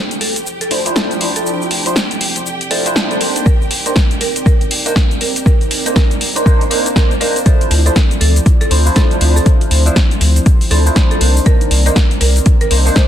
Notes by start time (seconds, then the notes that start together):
Already playing: F3 C4 E4 G4 A4 D5 G5
0.11 closed hi-hat, shaker
0.21 D2 A4, open hi-hat
0.36 closed hi-hat, shaker
0.47 shaker
0.61 A4, closed hi-hat, shaker
0.70 D2 F3 D4 E4 C5, open hi-hat
0.86 F3 D4 E4 C5, closed hi-hat, shaker
0.96 A4, snare, shaker
1.11 closed hi-hat, shaker
1.20 D2 F3 D4 E4 C5, open hi-hat
1.36 A4, closed hi-hat, shaker
1.47 shaker
1.62 shaker
1.71 D2, open hi-hat
1.86 F3 D4 E4 C5, closed hi-hat, shaker
1.96 snare, shaker
2.11 closed hi-hat, shaker
2.21 D2, open hi-hat
2.36 closed hi-hat, shaker
2.46 shaker
2.61 closed hi-hat, shaker
2.70 D2 F3 D4 E4 A4 C5, open hi-hat
2.86 F3 D4 E4 C5, closed hi-hat, shaker
2.96 snare, shaker
3.11 A4, closed hi-hat, shaker
3.20 C2 A#3 D4 D#4 A#4 C5, open hi-hat
3.36 closed hi-hat, shaker
3.46 A#4, kick, shaker
3.62 shaker
3.71 C2, open hi-hat
3.86 A#3 D4 D#4 A#4 C5, closed hi-hat, shaker
3.96 kick, snare, shaker
4.11 closed hi-hat, shaker
4.21 C2 A#4, open hi-hat
4.36 closed hi-hat, shaker
4.46 A#4, kick, shaker
4.61 closed hi-hat, shaker
4.71 C2, open hi-hat
4.86 A#3 D4 D#4 A#4 C5, closed hi-hat, shaker
4.96 kick, snare, shaker
5.11 closed hi-hat, shaker
5.21 C2 A#4, open hi-hat
5.36 closed hi-hat, shaker
5.46 A#4, kick, shaker
5.61 closed hi-hat, shaker
5.71 C2, open hi-hat
5.86 A#3 D4 D#4 A#4 C5, closed hi-hat, shaker
5.96 A#4, kick, snare, shaker
6.11 closed hi-hat, shaker
6.21 C2, open hi-hat
6.35 A#3 D4 D#4 A#4 C5, closed hi-hat, shaker
6.45 A#3 D4 D#4 A#4 C5, kick, shaker
6.61 closed hi-hat, shaker
6.70 A#1 A#3 D4 D#4 A#4 C5, open hi-hat
6.86 closed hi-hat, shaker
6.95 A#3 D4 D#4 A#4 C5, kick, snare, shaker
7.11 closed hi-hat, shaker
7.20 C2 A#3 D4 D#4 A#4 C5, open hi-hat
7.36 closed hi-hat, shaker
7.45 F3 C4 D4 E4 A4 C5 D5, kick, closed hi-hat, shaker
7.61 closed hi-hat, shaker
7.71 D2, open hi-hat
7.86 F3 D4 E4 A4 C5, closed hi-hat, shaker
7.96 kick, snare, closed hi-hat, shaker
8.11 closed hi-hat, shaker
8.21 D2 A4, open hi-hat
8.36 closed hi-hat, shaker
8.46 kick, closed hi-hat, shaker
8.61 A4, closed hi-hat, shaker
8.70 D2 F3 D4 E4 C5, open hi-hat
8.86 F3 D4 E4 C5, shaker
8.96 A4, kick, snare, closed hi-hat, shaker
9.11 closed hi-hat, shaker
9.20 D2 F3 D4 E4 C5, open hi-hat
9.36 A4, shaker
9.46 C5, kick, closed hi-hat, shaker
9.61 closed hi-hat, shaker
9.71 D2, open hi-hat
9.86 F3 D4 E4 C5, closed hi-hat, shaker
9.96 kick, snare, closed hi-hat, shaker
10.11 closed hi-hat, shaker
10.21 D2, open hi-hat
10.36 closed hi-hat, shaker
10.46 kick, closed hi-hat, shaker
10.61 open hi-hat, shaker
10.71 D2 F3 D4 E4 A4 C5, open hi-hat
10.86 F3 D4 E4 C5, shaker
10.96 kick, snare, closed hi-hat, shaker
11.11 A4, closed hi-hat, shaker
11.20 C2 D#3 A#3 C4 D4 D#4 A#4 C5 D5, open hi-hat
11.37 shaker
11.46 A#4, kick, closed hi-hat, shaker
11.61 closed hi-hat, shaker
11.71 C2, open hi-hat
11.86 A#3 D4 D#4 A#4 C5, closed hi-hat, shaker
11.96 kick, snare, closed hi-hat, shaker
12.11 closed hi-hat, shaker
12.21 C2 A#4, open hi-hat
12.36 closed hi-hat, shaker
12.46 kick, closed hi-hat, shaker
12.61 A#4, closed hi-hat, shaker
12.70 C2 A#3 D4 D#4 C5, open hi-hat
12.86 A#3 D4 D#4 C5, shaker
12.96 C5, kick, snare, closed hi-hat, shaker